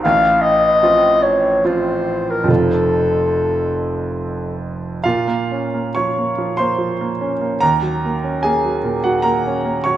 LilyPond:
<<
  \new Staff \with { instrumentName = "Clarinet" } { \time 3/4 \key bes \minor \tempo 4 = 73 f''8 ees''4 des''8 c''8. bes'16 | a'2~ a'8 r8 | r2. | r2. | }
  \new Staff \with { instrumentName = "Grand piano" } { \time 3/4 \key bes \minor r2. | r2. | <f' f''>4 <des'' des'''>8. <c'' c'''>4~ <c'' c'''>16 | <bes' bes''>4 <aes' aes''>8. <ges' ges''>16 <bes' bes''>8. <des'' des'''>16 | }
  \new Staff \with { instrumentName = "Grand piano" } { \time 3/4 \key bes \minor <a,, a,>4 <f c' f'>4 <f c' f'>4 | <f,, f, f c' f'>2. | bes,16 bes16 des'16 bes16 f16 bes16 f16 bes16 f16 bes16 des'16 bes16 | ees,16 ges16 bes16 des'16 bes16 ges16 bes,16 ges16 bes16 des'16 bes16 ges16 | }
>>